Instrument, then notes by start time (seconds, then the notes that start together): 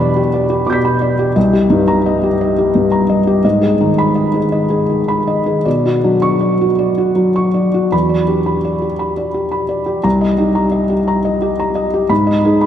felt piano
Already playing: E2 B2 D4 G4 B5
0.00 D5
0.16 G4
0.34 D5
0.50 G4
0.67 B2 D6 G6
0.73 B6
0.85 B5
1.01 D5
1.19 G4
1.36 C2 D#5
1.53 G4
1.70 G2 D#4
1.88 A#5
2.06 D#5
2.23 G4
2.41 D#5
2.58 G4
2.75 G2
2.92 A#5
3.09 D#5
3.27 G4
3.45 G#2 D#5
3.61 G#4
3.81 D#3 D#4
3.98 B5
4.15 D#5
4.34 G#4
4.52 D#5
4.70 G#4
4.89 D#3
5.08 B5
5.27 D#5
5.46 G#4
5.65 B2 D5
5.85 F#4
6.04 F#3 D4
6.22 C#6
6.41 D5
6.61 F#4
6.79 D5
6.98 F#4
7.15 F#3
7.36 C#6
7.54 D5
7.74 F#4
7.92 E2 B5
8.09 D5
8.27 D4 G4
8.46 B5
8.65 D5
8.82 G4
8.99 B5
9.17 D5
9.34 G4
9.52 B5
9.69 D5
9.86 G4
10.04 C2 A#5
10.21 D#5
10.38 D#4 G4
10.55 A#5
10.72 D#5
10.90 G4
11.08 A#5
11.25 D#5
11.42 G4
11.60 A#5
11.75 D#5
11.94 G4
12.09 G#2 B5
12.27 D#5
12.45 D#4 G#4
12.61 B5